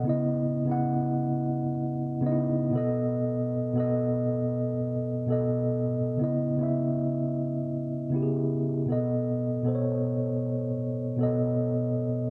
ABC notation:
X:1
M:4/4
L:1/16
Q:"Swing 16ths" 1/4=78
K:C#m
V:1 name="Tine electric piano"
[C,B,Ed]2 z [C,B,Ef]4- [C,B,Ef] z3 [C,B,DEd]3 [B,,B,Ad]2- | [B,,B,Ad]2 z [B,,B,Ad]4- [B,,B,Ad] z3 [B,,B,Ad]3 z2 | [C,B,Ed] z [C,B,Ee]4- [C,B,Ee] z3 [C,B,E=G^G]4 [B,,B,Ad]2- | [B,,B,Ad] z [B,,B,A^Bc]4- [=B,,B,A^Bc] z3 [=B,,B,Ad]4 z2 |]